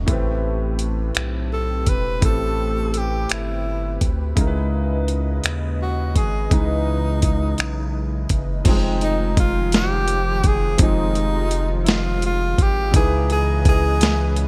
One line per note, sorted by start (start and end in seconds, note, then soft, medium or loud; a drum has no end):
0.06 1.12 A1 loud
0.06 2.18 A2 medium
0.06 2.18 A3 medium
0.06 4.33 A3 medium
0.06 4.33 C4 medium
0.06 2.19 C4 medium
0.06 4.33 G4 medium
0.06 8.62 B4 medium
0.06 kick loud
0.06 closed hi-hat medium
0.11 2.20 G4 medium
0.11 2.21 B4 medium
0.79 closed hi-hat medium
1.15 1.89 B1 medium
1.15 finger snap loud
1.15 closed hi-hat medium
1.53 1.91 A4 medium
1.86 2.25 E1 medium
1.86 2.24 B4 loud
1.86 kick medium
1.86 closed hi-hat medium
2.21 3.26 A1 medium
2.21 4.32 A2 medium
2.21 4.33 A3 medium
2.21 4.34 C4 medium
2.21 2.99 A4 loud
2.21 kick loud
2.21 closed hi-hat medium
2.25 4.34 G4 medium
2.25 4.35 A4 medium
2.94 closed hi-hat medium
2.98 3.32 G4 medium
3.29 3.98 G1 medium
3.29 4.08 E4 medium
3.29 finger snap loud
3.29 closed hi-hat medium
4.01 4.34 D2 medium
4.01 kick medium
4.01 closed hi-hat medium
4.35 5.40 C#2 loud
4.35 6.47 C#3 medium
4.35 8.61 C#3 medium
4.35 8.61 G#3 medium
4.35 6.47 G#3 medium
4.35 6.48 D#4 medium
4.35 6.48 E4 medium
4.35 8.61 D#5 medium
4.35 kick loud
4.35 closed hi-hat medium
4.41 4.46 A#4 medium
4.47 6.53 B4 medium
5.08 closed hi-hat medium
5.44 6.18 D#2 medium
5.44 finger snap loud
5.44 closed hi-hat medium
5.82 6.14 F#4 medium
6.16 6.48 G#1 medium
6.16 6.55 G#4 loud
6.16 kick medium
6.16 closed hi-hat medium
6.49 7.55 C#2 loud
6.49 8.61 C#3 medium
6.49 8.61 G#3 medium
6.49 8.62 D#4 medium
6.49 kick loud
6.49 closed hi-hat medium
6.54 8.63 E3 medium
6.54 8.31 D#4 medium
6.54 8.64 B4 medium
7.22 kick medium
7.22 closed hi-hat medium
7.58 8.26 B1 medium
7.58 finger snap loud
7.58 closed hi-hat medium
8.29 8.63 F#1 medium
8.29 kick medium
8.29 closed hi-hat medium
8.64 10.76 F1 loud
8.64 12.91 D#3 medium
8.64 10.75 F3 medium
8.64 12.90 F3 medium
8.64 12.90 G#3 medium
8.64 10.76 C4 medium
8.64 10.77 D#4 medium
8.64 12.90 F4 medium
8.64 kick loud
8.64 closed hi-hat medium
8.64 crash loud
8.69 10.78 G#3 medium
8.69 10.78 G5 medium
9.01 9.36 D#4 medium
9.01 closed hi-hat soft
9.37 9.77 F4 loud
9.37 kick loud
9.37 closed hi-hat medium
9.72 10.48 G4 loud
9.72 snare loud
9.72 closed hi-hat medium
10.08 closed hi-hat medium
10.44 10.81 G#4 loud
10.44 kick medium
10.44 closed hi-hat medium
10.77 12.55 F1 loud
10.77 12.89 F3 medium
10.77 12.90 C4 medium
10.77 12.91 D#4 medium
10.77 kick loud
10.77 closed hi-hat medium
10.82 12.92 G#3 medium
10.82 11.77 D#4 loud
10.82 12.91 G4 medium
11.15 closed hi-hat soft
11.51 closed hi-hat medium
11.83 11.93 E4 medium
11.83 closed hi-hat medium
11.88 12.25 F4 loud
11.88 snare loud
12.22 closed hi-hat medium
12.27 12.63 F4 loud
12.58 12.96 G#1 medium
12.58 12.95 G4 loud
12.58 kick loud
12.58 closed hi-hat medium
12.91 14.48 C#2 loud
12.91 14.48 C#3 medium
12.91 14.48 E3 medium
12.91 14.48 C#4 medium
12.91 14.48 D#4 medium
12.91 kick loud
12.91 closed hi-hat medium
12.96 14.48 E4 medium
12.96 13.28 G#4 loud
12.96 14.48 B4 medium
12.96 14.48 D#5 medium
13.30 13.65 G#4 loud
13.30 closed hi-hat soft
13.65 14.44 G#4 loud
13.65 kick loud
13.65 closed hi-hat medium
14.01 snare loud
14.01 closed hi-hat medium
14.36 closed hi-hat medium